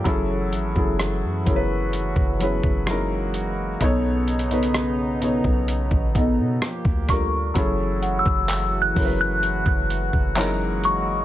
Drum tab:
HH |x---x---x---x---x---x---x---x---|x---xxxxx---x---x---x---x---x---|x---x---x---o---x---x---x---x---|
CP |--------------------------------|--------------------------------|--------x---------------x-------|
SD |--------r---------------r-------|--------r---------------r---r---|--------------------------------|
BD |o-----o-----o-----o---o---------|o-------------o---o-o-----o-o---|o-----o-----o-----o---o---------|